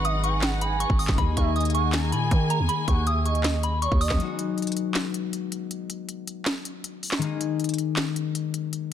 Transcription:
Already playing: G#1 F#3 G#3 B3 D#4 F#4 G#4 B4 F#5
0.04 D#5 D#6, closed hi-hat
0.24 G#5 C#6, closed hi-hat
0.42 F#5, snare, clap, closed hi-hat
0.61 G#5 B5, closed hi-hat
0.80 C#6, closed hi-hat
0.90 G#1, kick
0.99 D#6, open hi-hat
1.08 G#1, kick, snare, clap
1.14 D#2 D#3 G#3 A#3 G#4 G#5 B5, kick, closed hi-hat
1.20 D#4 G#4
1.37 D#2 E5 C#6, kick, closed hi-hat
1.56 D#5 D#6, closed hi-hat
1.60 closed hi-hat
1.65 closed hi-hat
1.70 closed hi-hat
1.74 F#5 C#6, closed hi-hat
1.93 A#5, snare, clap, closed hi-hat
2.12 A#2 G#5 B5, closed hi-hat
2.31 D#3, kick, closed hi-hat
2.50 A#5, closed hi-hat
2.60 E2
2.69 B5, closed hi-hat
2.88 D#2 F#5 C#6, kick, closed hi-hat
3.07 E5 D#6, closed hi-hat
3.25 D#5 C#6, closed hi-hat
3.35 closed hi-hat
3.44 snare, clap, closed hi-hat
3.63 B5, closed hi-hat
3.82 C#5 C#6, closed hi-hat
3.92 D#2, kick
4.01 D#5 D#6, open hi-hat
4.10 D#2, kick, cross-stick, snare, clap
4.16 F#3 G#3 B3, closed hi-hat
4.22 D#4 F#4
4.39 closed hi-hat
4.58 closed hi-hat
4.62 closed hi-hat
4.67 closed hi-hat
4.72 closed hi-hat
4.77 closed hi-hat
4.95 snare, clap, closed hi-hat
5.14 closed hi-hat
5.33 closed hi-hat
5.52 closed hi-hat
5.71 closed hi-hat
5.90 closed hi-hat
6.09 closed hi-hat
6.27 closed hi-hat
6.46 snare, clap, closed hi-hat
6.65 closed hi-hat
6.84 closed hi-hat
7.03 open hi-hat
7.11 snare, clap
7.18 D#3 G#3 A#3, closed hi-hat
7.24 D#4 G#4
7.41 closed hi-hat
7.60 closed hi-hat
7.64 closed hi-hat
7.69 closed hi-hat
7.74 closed hi-hat
7.78 closed hi-hat
7.96 snare, clap, closed hi-hat
8.16 closed hi-hat
8.35 closed hi-hat
8.54 closed hi-hat
8.73 closed hi-hat

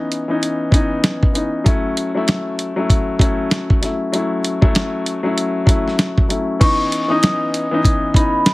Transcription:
Already playing: E3 B3 C#4 D#4
0.12 closed hi-hat
0.28 E3 B3 C#4 D#4
0.43 closed hi-hat
0.71 E3 B3 C#4 D#4, kick, closed hi-hat
1.04 snare, closed hi-hat
1.23 kick
1.33 E3 B3 C#4 D#4, closed hi-hat
1.64 F#3 A3 C#4 E4, kick, closed hi-hat
1.97 closed hi-hat
2.14 F#3 A3 C#4 E4
2.28 snare, closed hi-hat
2.59 closed hi-hat
2.76 F#3 A3 C#4 E4
2.90 kick, closed hi-hat
3.19 F#3 A3 C#4 E4, kick, closed hi-hat
3.51 snare, closed hi-hat
3.70 kick
3.81 F#3 A3 C#4 E4, snare, closed hi-hat
4.12 F#3 A3 C#4 E4, closed hi-hat
4.44 closed hi-hat
4.62 F#3 A3 C#4 E4, kick
4.75 snare, closed hi-hat
5.06 closed hi-hat
5.23 F#3 A3 C#4 E4
5.38 closed hi-hat
5.66 F#3 A3 C#4 E4, kick, closed hi-hat
5.88 snare
5.99 snare, closed hi-hat
6.18 kick
6.28 F#3 A3 C#4 E4, closed hi-hat
6.60 E3 B3 C#4 D#4 C#6, kick, closed hi-hat, crash
6.92 closed hi-hat
7.08 E3 B3 C#4 D#4 D#6
7.23 snare, closed hi-hat
7.54 closed hi-hat
7.71 E3 B3 C#4 D#4
7.85 kick, closed hi-hat
8.14 E3 B3 C#4 D#4 B5, kick, closed hi-hat
8.46 snare, closed hi-hat

